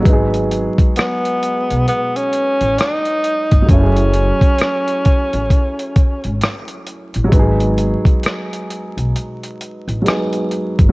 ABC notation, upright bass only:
X:1
M:4/4
L:1/16
Q:"Swing 16ths" 1/4=66
K:G#phr
V:1 name="Upright bass" clef=bass
G,,,3 z4 B,,, z3 A,,, z3 =G,,, | F,,,3 z4 A,,, z3 G,,, z3 A,,, | G,,,3 z4 B,,, z3 A,,, z3 =G,,, |]